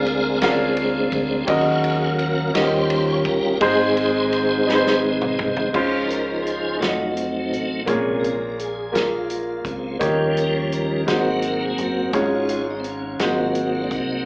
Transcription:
Already playing: fingered electric bass D2, grand piano D3 D4 F4 G#4 A#4 F5, tonewheel organ G#3 C4 D4 G#4 A#4 F5
0.06 ride
0.41 grand piano C#4 F4 G#4 A#4 F5, snare, ride
0.48 grand piano D4
0.77 ride
1.12 fingered electric bass D2, kick, ride
1.44 fingered electric bass D#2, grand piano C#4 D#4 F#4, tonewheel organ G4, ride
1.48 grand piano D#3 A#4 D#5, tonewheel organ F#3 C#4 G#4 F5, kick
1.84 ride
2.19 tonewheel organ A#4, ride
2.54 fingered electric bass D#2, grand piano D#3 C#4 D#4 F#4 A#4 D#5, tonewheel organ G3 C#4 F4 G4 C5, snare, ride
2.61 grand piano G4
2.90 ride
3.07 tonewheel organ C#5
3.25 fingered electric bass G1, tonewheel organ A#4, kick, ride
3.61 fingered electric bass G#1, grand piano G#2 D#4 G#4 C5, tonewheel organ G#3 C4 D#4 G#4 C5, kick, ride
3.97 ride
4.33 ride
4.67 grand piano D#4 G#4 B4, snare
4.75 grand piano C5
4.87 snare
5.22 mid tom
5.39 fingered electric bass C2, mid tom
5.57 floor tom
5.73 fingered electric bass C#2, grand piano C#3 G#3 C#4 F4 C5, tonewheel organ F3 D#4 C5, kick, crash
6.08 tonewheel organ A#4, closed hi-hat
6.42 tonewheel organ G#4
6.47 closed hi-hat
6.77 fingered electric bass F1, tonewheel organ F#3 A3 D#4, grand piano A3 F4 F#4
6.81 grand piano C#5, snare, closed hi-hat
6.88 grand piano D#5
7.12 tonewheel organ C4
7.17 closed hi-hat
7.52 fingered electric bass A1, closed hi-hat
7.85 fingered electric bass A#1, grand piano A#2 A#3 F4 G#4 C#5, tonewheel organ C3 C#3 G#3, kick, closed hi-hat
8.20 tonewheel organ A#4
8.24 closed hi-hat
8.59 tonewheel organ G#4, closed hi-hat
8.92 grand piano A#3 F4 G#4 A#4, tonewheel organ F4, snare, closed hi-hat
9.30 tonewheel organ F4, closed hi-hat
9.65 fingered electric bass C#2, tonewheel organ C#3 G#3 C4, kick, closed hi-hat
9.99 fingered electric bass D#2, grand piano D#3 A#3 D#4 G4 C#5, tonewheel organ F3 G3 C#4, kick, closed hi-hat
10.37 tonewheel organ A#4, closed hi-hat
10.57 tonewheel organ C#5
10.72 tonewheel organ A#4, closed hi-hat
11.06 fingered electric bass G#1, grand piano G#2 G#3 D#4 F#4 C5, snare, closed hi-hat
11.10 tonewheel organ F#3 A#3 C4 F#4
11.42 closed hi-hat
11.48 tonewheel organ A#4
11.65 tonewheel organ G#4
11.78 fingered electric bass F#1, closed hi-hat
11.83 tonewheel organ F#4
12.13 fingered electric bass G#1, grand piano G#2 G#3 C#4 F4 C#5, tonewheel organ G#3 C#4 F4, kick, closed hi-hat
12.49 tonewheel organ F4, closed hi-hat
12.70 tonewheel organ D#4
12.80 tonewheel organ C4
12.84 closed hi-hat
12.90 tonewheel organ C#4
13.19 fingered electric bass G#1, grand piano G#2 G#3 D#4 F#4 C5, tonewheel organ F#3 A#3 C4, snare, closed hi-hat
13.24 tonewheel organ F4
13.55 tonewheel organ F#4, closed hi-hat
13.75 tonewheel organ F4
13.83 tonewheel organ D4
13.91 fingered electric bass C2, tonewheel organ D#4, kick, closed hi-hat

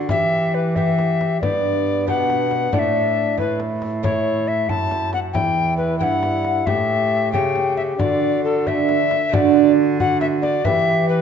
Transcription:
Already playing: cello D3
0.09 cello E3, lute E3, bassoon G4, recorder E5, frame drum
0.55 recorder B4
0.76 lute B3 G4, bassoon G4, recorder E5, frame drum
0.99 frame drum
1.21 frame drum
1.41 cello G2, lute G2, bassoon B3, recorder D5, frame drum
2.07 lute B2 B3 D4 G4, cello B2, recorder F#5, frame drum
2.30 frame drum
2.51 frame drum
2.72 lute A2 A3 D4 E4, cello A2, bassoon D4, recorder F#5, frame drum
2.79 recorder E5
3.38 lute A2, cello A2, bassoon E4, recorder B4, frame drum
3.60 frame drum
3.82 frame drum
4.03 lute A3 E4, bassoon E4, recorder C#5, frame drum
4.48 recorder E5
4.69 lute F#2, cello F#2, bassoon E4, recorder A5, frame drum
4.91 frame drum
5.13 recorder F#5, frame drum
5.33 lute E2, cello E2, bassoon E4, recorder G5, frame drum
5.77 recorder B4
5.99 lute G2 B3 E4, cello G2, recorder G5, frame drum
6.03 recorder F#5
6.23 frame drum
6.45 frame drum
6.66 cello A2, lute A2, bassoon G4, recorder E5, frame drum
7.32 lute C#3 A3 C#4 G4, cello C#3, bassoon G4, recorder G5, frame drum
7.56 frame drum
7.77 recorder E5, frame drum
7.99 lute D3, cello D3, bassoon F#4, recorder D5, frame drum
8.44 recorder A4
8.67 lute A3 D4 F#4, recorder E5, frame drum
8.89 frame drum
9.11 frame drum
9.29 lute D3 A3 D4 F#4
9.34 cello D3, bassoon F#4, recorder D5, frame drum
10.00 bassoon F#4, recorder F#5, frame drum
10.21 recorder E5, frame drum
10.42 recorder D5, frame drum
10.65 cello E3, lute E3 B3 B4, bassoon G4, recorder E5, frame drum
11.09 recorder B4

